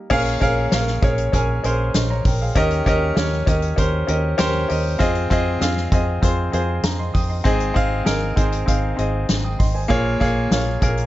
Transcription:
Already playing: G3 A#3 D#4
0.10 A#1 A#2 C#4 G#4 A#4 F5, kick, crash
0.26 closed hi-hat
0.41 A#1 C#4 G#4 A#4 F5, kick, closed hi-hat
0.72 A#1 C#4 G#4 A#4 F5, snare, closed hi-hat
0.87 snare
1.02 A#1 C#4 G#4 A#4 C#5, kick, closed hi-hat
1.18 closed hi-hat
1.32 A#1 C#4 G#4 A#4 G#5, kick, closed hi-hat
1.64 A#1 C#4 G#4 A#4 C5, closed hi-hat
1.94 A#1 D#5 C6, snare, closed hi-hat
2.10 C#5 A#5
2.25 A#1 A#4 G5, kick, open hi-hat
2.41 G#4 F5
2.55 D#2 D#3 C#4 G4 A#4 D#5, kick, closed hi-hat
2.71 closed hi-hat
2.86 D#2 C#4 G4 A#4 D#5, kick, closed hi-hat
3.16 D#2 C#4 G4 A#4 C#5, snare, closed hi-hat
3.32 snare
3.47 D#2 C#4 G4 A#4 D#5, kick, closed hi-hat
3.62 closed hi-hat
3.76 D#2 C#4 G4 A#4 C5, kick, closed hi-hat
4.07 D#2 C#4 G4 A#4 D#5, closed hi-hat
4.38 D#2 C#4 G4 A#4 C5, snare, closed hi-hat
4.69 D#2 C#4 G4 A#4 D#5, open hi-hat
4.99 F2 C4 F4 G#4 D#5, kick, closed hi-hat
5.15 closed hi-hat
5.30 F2 C4 F4 G#4 D#5, kick, closed hi-hat
5.60 F2 C4 F4 G#4 F5, snare, closed hi-hat
5.77 snare
5.92 F2 C4 F4 G#4 D#5, kick, closed hi-hat
6.22 F2 C4 F4 G#4 C5, kick, closed hi-hat
6.52 F2 C4 F4 G#4 C5, closed hi-hat
6.83 F2 A#5, snare, closed hi-hat
6.99 D#5 C6
7.14 F2 G5 D#6, kick, open hi-hat
7.29 D#5 C6
7.44 G#1 G#2 C4 D#4 G#4 D#5, kick, closed hi-hat
7.60 closed hi-hat
7.74 G#1 C4 D#4 G#4 F5, kick, closed hi-hat
8.04 G#1 C4 D#4 G#4 A#4, snare, closed hi-hat
8.36 G#1 C4 D#4 G#4 C5, kick, closed hi-hat
8.52 closed hi-hat
8.66 G#1 C4 D#4 G#4 F5, kick, closed hi-hat
8.97 G#1 C4 D#4 G#4 D#5, closed hi-hat
9.29 G#1, snare, closed hi-hat
9.44 G5 D#6
9.59 G#1 D#5 C6, kick, open hi-hat
9.74 C5 G#5
9.88 A#1 A#2 A#3 F4 G#4 C#5, kick, closed hi-hat
10.20 A#1 A#3 F4 G#4 C#5, kick, closed hi-hat
10.50 A#1 A#3 F4 G#4 C#5, snare, closed hi-hat
10.81 A#1 A#3 F4 G#4 A#4, kick, closed hi-hat
10.97 closed hi-hat

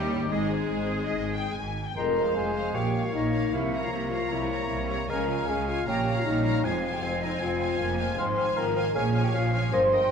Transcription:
Already playing: D#2 D#3 G3 C#4 D#4 G4 A#4
0.10 G#2 C#5
0.18 C4
0.23 D#4
0.27 G#2 G#3 G#4 D#5
0.31 G#1 C4 G#4
0.52 C5
0.72 G#1 G#2 C5
1.04 D#5
1.14 G#1 G#2
1.35 G5
1.55 G#1 G#2 G#5
1.86 G5
1.96 F1 F2 G#3 A#4 C5 A#5
2.15 C5 F5
2.35 F1 F2 G#3 C4 G#4 C5 G#5
2.54 C3 C5 F5
2.74 A#1 A#2 A#3 G4 C#5 F5 G5
2.93 C#5 F5
3.04 F4 F5
3.13 A#1 A#2 A#3 D#4 D#5
3.33 F3 C#5 F5
3.52 C2 C3 A#3 E4 C#5 E5
3.73 C#5 A#5
3.83 F4 F5
3.91 C2 C3 A#3 E4 C#5 E5
4.10 G3 F4 C#5 F5 A#5
4.30 C2 C3 G3 A#3 E4 C#5 E5
4.51 C#5 A#5
4.69 C2 C3 G3 A#3
4.90 G3 C#5 A#5
5.08 C#2 C#3 F3 G#3 A#4 C#5 F5 G#5 A#5
5.28 C#5 F5 G#5
5.48 C#2 C#3 G#3 G#4 F5 G#5
5.67 C#4 F4 C#5 F5 G#5
5.87 A#1 A#2 A#3 C#4 G4 C#5 F5 G5 A#5
6.06 C#5 F5 A#5
6.17 F4 F5
6.25 A#1 A#2 G3 A#3 D#4 D#5
6.45 F3 C#5 F5 A#5
6.64 F1 F2 G#3 C4 F4 C5 F5 G#5
6.83 C5 F5 G#5
6.93 G4 G5
7.03 F1 F2 G#3 C4 F4 F5 G#5
7.22 C3 D#4 C5 D#5 F5 G#5
7.41 F1 F2 G#3 C4 F4 F5 G#5
7.60 C5 F5 G#5
7.79 F1 F2 G#3 A#3
7.98 C3 C5 F5 G#5
8.17 G#1 G#2 G#3 C4 C5 F5 C6
8.37 C4 C5 F5 G#5
8.56 G#1 G#2 F3 C4 A#4 F5 A#5
8.76 G#3 C4 C5 F5 G#5
8.94 A#1 A#2 F3 C#4 G#4 C#5 F5 G#5
9.14 C#4 A#4 C#5 F5 G#5
9.24 G4 G5
9.34 A#1 A#2 C#4 F4 F5
9.53 F3 C#4 C#5 F5 G#5
9.72 G1 G2 G3 A#3 C5 D#5 C6
9.92 A#3 A#4 D#5 G5

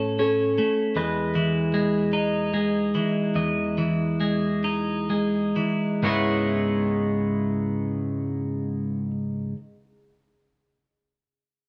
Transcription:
Already playing: A2 A3 C#4 A4 C#5 E5
0.19 C#4 A4
0.58 A3
0.96 E2 G#3 B4 D#5
1.35 E3
1.74 G#3
2.13 D#4
2.54 G#3
2.95 E3
3.35 E2 D#5
3.78 E3
4.20 G#3
4.64 D#4
5.10 G#3
5.56 E3
6.03 C#2 G#2 C#3 G#3 B3 E4 B4 C#5

